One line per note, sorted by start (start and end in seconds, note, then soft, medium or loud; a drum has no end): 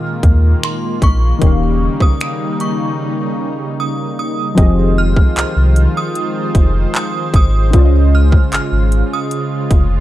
0.00 1.36 A#2 medium
0.00 1.39 D#3 medium
0.00 1.38 G#3 medium
0.00 1.37 A#3 medium
0.00 4.54 A#3 medium
0.00 1.38 C4 medium
0.00 1.38 F4 medium
0.00 1.39 G#4 medium
0.00 1.40 D#5 medium
0.00 0.32 G#5 medium
0.00 0.67 F6 loud
0.23 0.54 D#2 medium
0.23 kick medium
0.23 closed hi-hat medium
0.63 0.78 C6 medium
0.63 finger snap loud
1.02 1.33 A#1 medium
1.02 2.04 C#6 loud
1.02 kick medium
1.02 closed hi-hat medium
1.39 1.88 D#1 loud
1.39 4.54 C#3 medium
1.39 4.52 D#3 medium
1.39 4.54 G3 medium
1.39 4.53 A#3 medium
1.39 4.54 D#4 medium
1.39 kick loud
1.39 closed hi-hat medium
1.43 4.54 C#4 medium
1.43 4.55 G4 medium
1.43 4.56 F5 medium
2.00 2.08 G#1 soft
2.00 2.62 D#6 loud
2.00 kick medium
2.00 cross-stick medium
2.21 finger snap loud
2.21 closed hi-hat medium
2.60 4.14 C#6 medium
2.60 closed hi-hat medium
3.80 3.94 D#6 medium
4.19 4.94 D#6 medium
4.55 5.20 F1 loud
4.55 7.70 D#3 medium
4.55 7.68 F3 medium
4.55 10.00 G#3 medium
4.55 7.69 C4 medium
4.55 7.71 F4 medium
4.55 7.70 G4 medium
4.55 10.00 C5 medium
4.55 5.45 D#5 medium
4.55 kick loud
4.55 closed hi-hat medium
4.61 7.71 G#4 medium
4.61 7.72 D#5 medium
4.98 5.37 F6 medium
5.17 kick medium
5.37 5.44 C2 medium
5.37 6.24 A#4 medium
5.37 5.98 F6 medium
5.37 clap loud
5.37 closed hi-hat medium
5.56 5.87 C2 medium
5.76 closed hi-hat medium
5.97 6.95 D#6 medium
6.15 closed hi-hat medium
6.55 6.86 F1 medium
6.55 kick loud
6.55 closed hi-hat medium
6.95 7.32 D#6 medium
6.95 clap loud
7.34 7.75 G#1 loud
7.34 8.16 D#6 medium
7.34 kick loud
7.34 closed hi-hat medium
7.71 8.35 C#2 loud
7.71 10.00 C#3 medium
7.71 10.00 C#4 medium
7.71 10.00 F4 medium
7.71 kick loud
7.71 closed hi-hat medium
7.75 10.00 F4 medium
7.75 10.00 C5 medium
7.75 7.82 D5 medium
7.85 10.00 D#5 medium
8.15 8.53 F6 medium
8.32 kick medium
8.52 8.60 G#1 soft
8.52 9.08 F6 medium
8.52 clap loud
8.52 closed hi-hat medium
8.72 9.03 G#1 medium
8.92 closed hi-hat medium
9.13 10.00 D#6 medium
9.31 closed hi-hat medium
9.71 10.00 F1 medium
9.71 kick medium
9.71 closed hi-hat medium